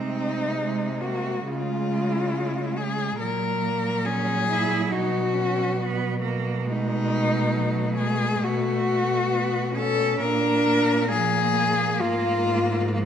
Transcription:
Already playing: C3 G#3 C4 D#4
0.55 G#3
1.01 A#3 F#4
1.45 C#3 G#3 F4
2.77 G#4
3.18 A#2 F#3 A#4
3.62 A#3
4.05 C#4 G#4
4.50 E4
4.92 B2 D#4 F#4
5.34 C#4
5.80 B3
6.22 A#3
6.66 G#3 A3 D#4
7.54 F#3
7.98 G#3 G#4
8.43 A3 F#4
9.31 B3
9.74 C#4 A4
10.21 A#2 A#3 D4 A#4
11.12 F3 G#4
12.01 G#2 A#3 F4
12.44 G#3
12.90 F3

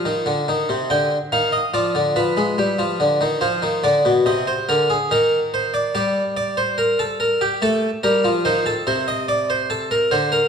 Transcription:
Already playing: F5
0.05 D#3
0.26 D3
0.48 D#3
0.69 C3
0.90 D3 G5
1.32 D#3 F5
1.52 D#5
1.74 F3 D5
1.95 D3
2.16 F3 B4
2.37 G#3
2.58 G3
2.79 F3
3.00 D3
3.21 D#3
3.41 F3 C5
3.63 D#3
3.84 D3 D5
4.05 B2
4.26 C3 D#5
4.47 C5
4.69 D3 A#4
4.90 G#4
5.11 D#3 A#4
5.54 C5
5.74 D5
5.95 G3 D5
6.37 D5
6.57 C5
6.78 A#4
6.99 A4
7.20 A#4
7.41 G4
7.62 A3 A4
8.03 G3 A#4
8.24 F3
8.45 D#3 C5
8.66 A4
8.87 C3 C5
9.08 D#5
9.28 D5
9.50 C5
9.70 A4
9.91 A#4
10.11 D3 C5
10.32 A#4

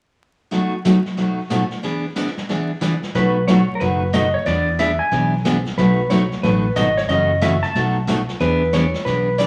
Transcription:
0.51 B2 F#3 A3 D#4 F#4, brush sweep, snare
0.85 B2 F#3 A3 D#4 F#4, snare, hi-hat pedal
1.06 snare
1.17 B2 F#3 A3 D#4 F#4, brush sweep, snare
1.50 B2 F#3 A3 D#4 F#4, snare, hi-hat pedal
1.71 snare
1.83 E3 B3 D4 G#4, brush sweep, snare
2.16 E3 B3 D4 G#4, snare, hi-hat pedal
2.27 snare
2.37 snare
2.49 E3 B3 D4 G#4, brush sweep, snare
2.81 E3 B3 D4 G#4, snare, hi-hat pedal
3.03 snare
3.15 B1 B2 F#3 A3 D#4 F#4 B4, brush sweep, snare
3.48 B2 F#3 A3 D#4 F#4 C#5, snare, hi-hat pedal
3.75 A#4
3.80 F#1 B2 F#3 A3 D#4 F#4 B4, brush sweep, snare
4.13 B2 F#3 A3 D#4 F#4 D#5, snare, hi-hat pedal
4.34 C#5
4.46 E2 E3 B3 D4 G#4 D5, brush sweep, snare
4.79 E3 B3 D4 G#4 E5, snare, hi-hat pedal
4.99 G#5
5.12 B1 E3 B3 D4 G#4, brush sweep, snare
5.45 E3 B3 D4 G#4, snare, hi-hat pedal
5.66 snare
5.77 B1 B2 F#3 A3 D#4 F#4 B4, brush sweep, snare
6.10 B2 F#3 A3 D#4 F#4 C#5, snare, hi-hat pedal
6.32 snare
6.43 A1 B2 F#3 A3 D#4 F#4 B4, brush sweep, snare
6.76 G#1 B2 F#3 A3 D#4 F#4 D#5, snare, hi-hat pedal
6.97 C#5, snare
7.09 F#1 C#3 E3 A3 C#4 F#4 D#5, brush sweep, snare
7.41 C#3 E3 A3 C#4 F#4 E5, snare, hi-hat pedal
7.63 A5, snare
7.75 B1 B2 F#3 A3 D#4 F#4, brush sweep, snare
8.07 B2 F#3 A3 D#4 F#4, snare, hi-hat pedal
8.29 snare
8.40 E2 E3 B3 D4 G#4 B4, brush sweep, snare
8.73 E3 B3 D4 G#4 C#5, snare, hi-hat pedal
8.94 snare
9.05 B1 E3 B3 D4 G#4 B4, brush sweep, snare
9.38 E3 B3 D4 G#4 D5, snare, hi-hat pedal

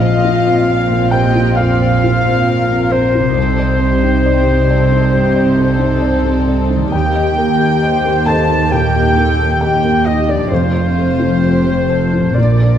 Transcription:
Already playing: A#1 A#2 C4 F4 C5 D#5 F5
0.02 C5
0.25 F4
0.46 C4
0.69 C5 F5
0.92 C4
1.11 G4 C5 D#5 G5
1.35 F4
1.56 F2 F4 D5 F5
1.81 C5
2.04 F4 C5
2.28 C4
2.49 A#4 C5
2.71 C4
2.90 C4 C5
3.15 F4
3.20 C3
3.24 C4
3.29 D#4
3.33 C2 C3 C4 D#4 A4 D5
3.38 C2
3.59 D5
3.80 G4 C5
4.03 D#4
4.25 G4 D5
4.47 C4
4.69 A4 D5
4.91 D#4
5.13 G2 G4
5.35 D5
5.56 A4 C5
5.79 D#4
6.01 D5
6.25 C4
6.48 D5
6.70 D#4
6.76 D#3
6.81 A#3
6.85 G4
6.89 D#2 G4 D#5 G5
6.93 D#2 A#3 G4 G5
7.16 D#5
7.38 A#4
7.60 G4
7.82 C5 D#5
8.05 A#3
8.26 A4 D#5 A5
8.51 G4
8.71 A#2 G4 A#4 G5
8.95 D#5
9.17 A#3 A4
9.40 G4
9.61 G4 D#5 G5
9.84 A#3
10.05 D#4 D#5
10.28 D4 G4 D5
10.34 F3
10.38 A3
10.42 F4
10.47 C5
10.51 F1 F2 A3 C4 F4 C5
10.74 C5
10.97 A4
11.19 F4
11.43 G4 C5
11.67 A3
11.90 A4 C5
12.13 F4
12.20 A#2
12.24 A#3
12.29 F4
12.34 A#2 A#4 D5
12.38 A#1 A#2 A#3 D4 D5
12.62 A#4

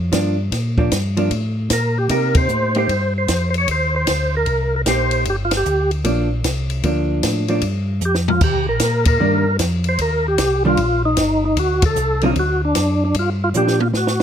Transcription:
Already playing: F2
0.12 G2 F3 A#3 D4, kick, snare, hi-hat pedal, ride
0.52 A#2, kick, snare, ride
0.78 F3 A#3 D4, kick
0.92 G2, kick, snare, hi-hat pedal, ride
1.17 F3 A#3 D4, ride
1.31 A2, kick, ride
1.70 A#2 A#4, kick, snare, hi-hat pedal, ride
1.98 G4
2.09 C3 A#3 D#4 G4 A#4, kick, ride
2.35 C5, kick, ride
2.49 A2, hi-hat pedal
2.75 A#3 D#4 G4 C5, ride
2.89 G2, kick, ride
3.18 C5
3.28 F2, kick, snare, hi-hat pedal, ride
3.50 C5, ride
3.58 C#5
3.68 D#2 C5, kick, ride
3.96 C5
4.07 D2, kick, snare, hi-hat pedal, ride
4.37 A#4
4.46 C2, kick, ride
4.76 A#4
4.86 A#1 A#3 D#4 G4 C5, kick, snare, hi-hat pedal, ride
5.11 ride
5.25 G1, kick, ride
5.30 G4
5.45 F4
5.51 snare, ride
5.57 G4
5.65 D2, hi-hat pedal
5.91 ride
6.04 A#1 F3 A#3 D4, kick, ride
6.44 C2, kick, snare, hi-hat pedal, ride
6.70 ride
6.84 D2 F3 A#3 D4, kick, ride
7.23 A2, kick, snare, hi-hat pedal, ride
7.48 F3 A#3 D4, ride
7.62 G2, kick, ride
8.01 F2, hi-hat pedal
8.05 G4
8.15 snare
8.28 F4, floor tom
8.41 D#2 G4, kick, crash
8.55 D2
8.68 A#1 A#4
8.80 A#2, kick, snare, hi-hat pedal, ride
9.05 A#4, kick, ride
9.20 G2 D#3 G3 A#3 D4
9.59 F2, kick, snare, hi-hat pedal, ride
9.84 ride
9.89 C5
9.99 D#2 A#4, kick, ride
10.28 G4
10.38 C2, kick, snare, hi-hat pedal, ride
10.65 D#3 G3 A#3 D4 F4
10.77 A#1, kick, ride
11.05 D#4
11.17 G1, kick, snare, hi-hat pedal, ride
11.45 D#4
11.57 D2 F#4, kick, ride
11.82 A4, kick, ride
11.96 C2, hi-hat pedal
12.21 D3 F#3 C4 D#4, ride
12.26 F4
12.36 D2 F#4, kick, ride
12.65 D4
12.75 F#2, kick, snare, hi-hat pedal, ride
13.05 D4
13.14 G2, kick, ride
13.19 F4
13.44 F4
13.54 A#2 F3 A#3 D4 G4, hi-hat pedal
13.68 snare
13.80 F4, high tom
13.93 A2 F#4, snare
14.07 snare

